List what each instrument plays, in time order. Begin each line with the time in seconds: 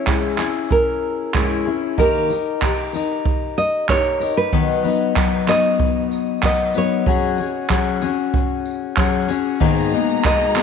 Already playing: nylon-string guitar C#5
0.07 steel-string acoustic guitar G#3 C#4 E4 G#4, kick, clap
0.38 steel-string acoustic guitar C#4 E4 G#4, clap
0.71 nylon-string guitar A#4, kick
1.34 steel-string acoustic guitar G#3 C#4 E4 G#4, nylon-string guitar G#4, kick, clap
1.66 steel-string acoustic guitar C#4 E4 G#4
1.98 steel-string acoustic guitar D#3 A#3 D#4 G4 A#4, nylon-string guitar A#4, kick
2.30 steel-string acoustic guitar D#4 G4 A#4, tambourine
2.62 steel-string acoustic guitar A#3 D#4 G4 A#4, kick, clap
2.93 steel-string acoustic guitar D#4 G4 A#4, tambourine
3.25 kick
3.58 nylon-string guitar D#5, tambourine
3.88 steel-string acoustic guitar A#3 D#4 G4 A#4, nylon-string guitar C#5, kick, clap
4.20 steel-string acoustic guitar D#4 G4 A#4, tambourine
4.37 nylon-string guitar B4
4.53 steel-string acoustic guitar B2 D#3 F#3 B3 D#4 B4, kick
4.83 steel-string acoustic guitar F#3 B3 D#4 B4, tambourine
5.16 steel-string acoustic guitar F#3 B3 D#4 B4, kick, clap
5.47 steel-string acoustic guitar F#3 B3 D#4 B4, nylon-string guitar D#5, clap, tambourine
5.80 kick
6.11 tambourine
6.43 steel-string acoustic guitar F#3 B3 D#4 B4, nylon-string guitar D#5, kick, clap
6.74 steel-string acoustic guitar F#3 B3 D#4 B4, nylon-string guitar C#5, tambourine
7.06 steel-string acoustic guitar F#3 C#4 F#4 G#4, kick
7.38 steel-string acoustic guitar C#4 F#4 G#4, tambourine
7.69 steel-string acoustic guitar F#3 C#4 F#4 G#4, kick, clap
8.01 steel-string acoustic guitar C#4 F#4 G#4, tambourine
8.34 kick
8.66 tambourine
8.97 steel-string acoustic guitar F#3 C#4 F#4 G#4, kick, clap
9.28 steel-string acoustic guitar C#4 F#4 G#4, tambourine
9.60 steel-string acoustic guitar G#2 D#3 A#3 B3 D#4 G#4, string section B2 G#3 D#4 A#5, kick, crash
9.92 steel-string acoustic guitar A#3 B3 D#4 G#4, tambourine
10.24 steel-string acoustic guitar A#3 B3 D#4 G#4, nylon-string guitar D#5, kick, clap
10.55 steel-string acoustic guitar A#3 B3 D#4 G#4, clap, tambourine